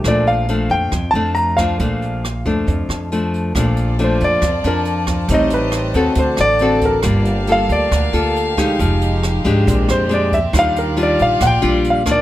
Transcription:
0.04 A#1 A#2 F3 A3 D4 D5, kick, cross-stick, closed hi-hat
0.27 F5, closed hi-hat
0.48 F3 A3 D4, closed hi-hat
0.70 F2 G5, closed hi-hat
0.92 F2, kick, cross-stick, closed hi-hat
1.11 F2 A5, closed hi-hat
1.15 F3 A3 D4
1.35 A#5, closed hi-hat
1.57 F3 A3 D4 F5, kick, cross-stick, closed hi-hat
1.79 A#1 A#2 F3 A3 D4, kick, closed hi-hat
2.02 closed hi-hat
2.24 cross-stick, closed hi-hat
2.45 F2 F3 A3 D4, kick, closed hi-hat
2.67 F2, kick, closed hi-hat
2.89 F2, cross-stick, closed hi-hat
3.12 F3 A3 D4, closed hi-hat
3.34 closed hi-hat
3.55 A#1 A#2 F3 A3 D4 F4 D5 A5, kick, cross-stick, closed hi-hat
3.77 closed hi-hat
3.99 F3 A3 D4, closed hi-hat
4.04 C5
4.20 F2, closed hi-hat
4.24 D5
4.42 F2, kick, cross-stick, closed hi-hat
4.64 F2 F3 D4 A#4, closed hi-hat
4.85 closed hi-hat
5.07 kick, cross-stick, closed hi-hat
5.28 A1 A2 G3 C4 D#4 G4 D#5, kick, closed hi-hat
5.34 D#5
5.50 B4, closed hi-hat
5.72 cross-stick, closed hi-hat
5.94 D#2 C4 F#4 A4, closed hi-hat
6.15 D2 D3 C4 F#4 C5 D5, kick, closed hi-hat
6.37 A1 D5, cross-stick, closed hi-hat
6.59 C4 F#4 A4, closed hi-hat
6.81 kick, closed hi-hat
6.85 A#4
7.02 G1 G3 A#3 F4 G4 F5, kick, cross-stick, closed hi-hat
7.25 closed hi-hat
7.47 A#3 F4 A4, closed hi-hat
7.52 F5
7.69 D2 D5, closed hi-hat
7.92 D2 D3, kick, cross-stick, closed hi-hat
8.13 D2 A#3 F4 A4, closed hi-hat
8.36 closed hi-hat
8.57 G#3 D#4 G4, kick, cross-stick, closed hi-hat
8.79 F1 F3 G#3 D#4, kick, closed hi-hat
9.02 closed hi-hat
9.23 cross-stick, closed hi-hat
9.45 G#1 G#3 D4 G4, kick, closed hi-hat
9.67 A#1 A#2 C4 D5, kick, closed hi-hat
9.89 F2 C5, cross-stick, closed hi-hat
10.09 G#3 D4 G4, closed hi-hat
10.14 D5
10.32 E5, kick, closed hi-hat
10.53 D#2 D#3 G3 D4 F4 D5 F5, kick, cross-stick, closed hi-hat
10.59 F5
10.76 A#4, closed hi-hat
10.97 G3 D4 F4, closed hi-hat
11.03 D5
11.19 A#1 F5, closed hi-hat
11.40 A#1 A#2 F#5, kick, cross-stick, closed hi-hat
11.47 G5
11.62 A#1 G3 D4 F4, closed hi-hat
11.84 closed hi-hat
11.90 F5
12.06 D#3 A#3 D4, kick, cross-stick, closed hi-hat
12.11 D5

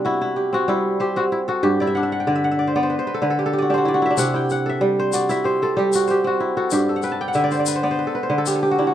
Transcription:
Already playing: C3 G3 A3 B3 D4 E4 G4 A4
0.05 E4 F#4
0.21 E4
0.36 G4
0.53 C4 F#4
0.68 G3 E4 G4
1.00 G4 C5
1.16 C4 F#4
1.32 E4
1.48 F#4 A4
1.63 G2 G4
1.80 E4 D5
1.87 E5
1.95 D4 F#5
2.03 E5
2.12 F#5
2.20 G5
2.27 D3 D5
2.35 E5
2.44 F#5
2.51 E5
2.59 D5
2.67 C5
2.76 B3 D5
2.83 C5
2.90 B4
2.99 C5
3.07 B4
3.14 A4
3.22 D3 B4
3.30 A4
3.39 G4
3.46 A4
3.53 G4
3.58 F#4 D5
3.70 D4 G4
3.74 F#4 C5
3.85 E4 D5
3.94 F#4
4.02 E4 E5
4.10 D4
4.17 C3 G4 F#5, shaker
4.34 E4 G5
4.50 F#5, shaker
4.66 A4 E5
4.81 G3
4.99 C5
5.13 F#4 D5, shaker
5.29 E4 E5, shaker
5.44 G4 C5
5.62 C4 A4
5.77 G3 G4
5.93 F#4, shaker
6.07 G4 C5, shaker
6.24 C4 F#4
6.40 E4
6.57 F#4 A4
6.71 G2 G4, shaker
6.89 A4
6.96 F#5
7.02 B4 G5, shaker
7.12 A5
7.21 D5 G5
7.28 F#5
7.34 D3 E5, shaker
7.44 D5
7.51 C5, shaker
7.59 D5
7.66 B4, shaker
7.76 C5
7.83 B3 D5
7.91 C5
7.99 B4
8.07 A4
8.15 B4
8.23 C5
8.30 D3 B4
8.38 A4
8.46 G4, shaker
8.55 A4
8.63 G4
8.71 F#4
8.79 D4 E4
8.87 F#4

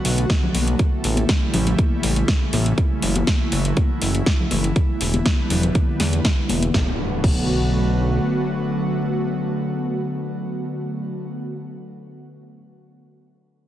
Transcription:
Already playing: D3 F#3 A3 B3 F#4
0.05 B1, open hi-hat
0.18 closed hi-hat
0.30 kick, snare, closed hi-hat
0.43 low conga
0.54 B1, open hi-hat, high conga
0.68 closed hi-hat
0.79 C#3 E3 G3 E4, kick, closed hi-hat
1.04 A1, open hi-hat
1.16 closed hi-hat, high conga
1.29 kick, snare, closed hi-hat
1.54 A1, open hi-hat, low conga
1.67 closed hi-hat, low conga
1.78 kick, closed hi-hat, high conga
2.03 A1, open hi-hat
2.16 closed hi-hat
2.28 kick, snare, closed hi-hat
2.53 A1, open hi-hat, high conga
2.66 closed hi-hat
2.78 F#3 E4, kick, closed hi-hat
3.02 F#1, open hi-hat
3.16 closed hi-hat, high conga
3.27 kick, snare, closed hi-hat
3.52 F#1, open hi-hat
3.65 closed hi-hat
3.77 kick, closed hi-hat, high conga
4.02 F#1, open hi-hat
4.15 closed hi-hat
4.26 kick, snare, closed hi-hat
4.40 low conga
4.51 F#1, open hi-hat, high conga
4.64 closed hi-hat
4.76 D3 G3 B3, kick, closed hi-hat
5.01 E1, open hi-hat
5.14 closed hi-hat, high conga
5.26 kick, snare, closed hi-hat
5.50 E1, open hi-hat, low conga
5.63 closed hi-hat, low conga
5.75 kick, closed hi-hat, high conga
6.00 E2, snare, open hi-hat
6.13 closed hi-hat
6.25 kick, snare, closed hi-hat
6.49 E1, open hi-hat, high conga
6.63 closed hi-hat
6.74 B1 D3 F#3 A3 B3 F#4, kick, snare, impact
7.24 B1, kick, crash

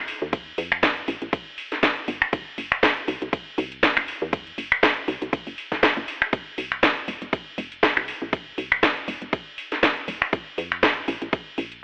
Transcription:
Already playing: F1
0.08 open hi-hat
0.22 D#2
0.33 kick, closed hi-hat, ride
0.58 F2, open hi-hat
0.72 finger snap, closed hi-hat
0.83 kick, snare, closed hi-hat, ride
0.97 closed hi-hat
1.08 A#1, open hi-hat
1.22 A#1, closed hi-hat
1.33 kick, closed hi-hat, ride
1.58 open hi-hat
1.72 snare, closed hi-hat
1.83 kick, snare, closed hi-hat, ride
1.97 closed hi-hat
2.08 G#1, open hi-hat
2.22 finger snap
2.33 C2, kick, closed hi-hat, ride
2.58 G1, open hi-hat
2.72 finger snap, closed hi-hat
2.83 kick, snare, closed hi-hat, ride
2.97 closed hi-hat
3.08 C2, open hi-hat
3.22 C2, closed hi-hat
3.33 kick, closed hi-hat, ride
3.58 C2, open hi-hat
3.72 closed hi-hat
3.83 kick, snare, closed hi-hat, ride
3.97 G1, finger snap, closed hi-hat
4.08 open hi-hat
4.22 E2
4.33 kick, closed hi-hat, ride
4.47 closed hi-hat
4.58 G1, open hi-hat
4.72 finger snap, closed hi-hat
4.83 kick, snare, closed hi-hat, ride
4.97 closed hi-hat
5.08 C2, open hi-hat
5.22 C2, closed hi-hat
5.33 G1, kick, closed hi-hat, ride
5.47 G1, open hi-hat
5.58 open hi-hat
5.72 kick, snare, closed hi-hat
5.83 kick, snare, closed hi-hat, ride
5.97 G1, closed hi-hat
6.08 open hi-hat
6.22 finger snap, closed hi-hat
6.33 F1, kick, closed hi-hat, ride
6.58 C2, open hi-hat
6.72 finger snap, closed hi-hat
6.83 kick, snare, closed hi-hat, ride
6.97 closed hi-hat
7.08 F1, open hi-hat
7.22 F1, closed hi-hat
7.33 kick, closed hi-hat, ride
7.58 F1, open hi-hat
7.72 closed hi-hat
7.83 kick, snare, closed hi-hat, ride
7.97 C2, finger snap, closed hi-hat
8.08 open hi-hat
8.22 A#1
8.33 kick, closed hi-hat, ride
8.58 C2, open hi-hat
8.72 finger snap, closed hi-hat
8.83 kick, snare, closed hi-hat, ride
8.97 closed hi-hat
9.08 F1, open hi-hat
9.22 F1, closed hi-hat
9.33 kick, closed hi-hat, ride
9.58 open hi-hat
9.72 snare, closed hi-hat
9.83 kick, snare, closed hi-hat, ride
9.97 closed hi-hat
10.08 D#1, open hi-hat
10.22 finger snap
10.33 A#1, kick, closed hi-hat, ride
10.58 F2, open hi-hat
10.72 finger snap, closed hi-hat
10.83 kick, snare, closed hi-hat, ride
10.97 closed hi-hat
11.08 A#1, open hi-hat
11.22 A#1, closed hi-hat
11.33 kick, closed hi-hat, ride
11.58 A#1, open hi-hat
11.72 closed hi-hat

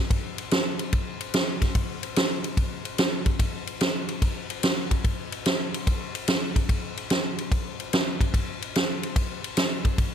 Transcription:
0.11 kick, ride
0.38 ride
0.51 snare, ride
0.79 ride
0.93 kick, ride
1.21 ride
1.34 snare, ride
1.62 kick, snare, ride
1.75 kick, ride
2.03 ride
2.16 snare, ride
2.44 ride
2.57 kick, ride
2.85 ride
2.98 snare, ride
3.26 kick, ride
3.39 kick, ride
3.67 ride
3.81 snare, ride
4.09 ride
4.22 kick, ride
4.50 ride
4.63 snare, ride
4.91 kick, ride
5.04 kick, ride
5.32 ride
5.46 snare, ride
5.74 ride
5.87 kick, ride
6.15 ride
6.28 snare, ride
6.56 kick, ride
6.69 kick, ride
6.97 ride
7.10 snare, ride
7.38 ride
7.52 kick, ride
7.80 ride
7.93 snare, ride
8.21 kick, ride
8.34 kick, ride
8.62 ride
8.76 snare, ride
9.03 ride
9.16 kick, ride
9.44 ride
9.57 snare, ride
9.85 kick, ride
9.98 kick, ride

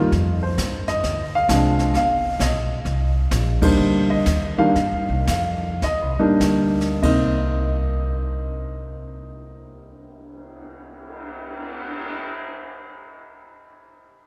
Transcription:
Already playing: G2 G3 A#3 F4
0.12 F2, brush sweep, kick, snare
0.43 C5
0.58 G2, kick, snare, hi-hat pedal
0.88 D#5, snare
1.03 D2, brush sweep, kick, snare
1.35 F5
1.48 C2 F3 G#3 C4 D4, kick, snare, hi-hat pedal
1.79 snare
1.94 G1 F5, brush sweep, kick, snare
2.39 B1 D#5, kick, snare, hi-hat pedal
2.85 C2, brush sweep, kick, snare
3.31 A#1, kick, snare, hi-hat pedal
3.62 G3 A#3 D4 D#4 C5, kick, ride
3.77 D2, brush sweep
4.10 D#5
4.26 D#2, kick, snare, hi-hat pedal
4.58 D#3 G3 A#3 D4 F5
4.75 G2, brush sweep, kick, snare
4.92 D#2
5.09 C2
5.27 F2 F5, kick, snare, hi-hat pedal
5.82 D#2 D#5, brush sweep, kick, snare
6.02 C2
6.19 A#1 G3 A#3 D4 D#4
6.40 D2, kick, snare, hi-hat pedal
6.81 snare
7.02 C2 C3 A#3 C4 D#4 D#5, kick, crash
7.45 cymbal swell

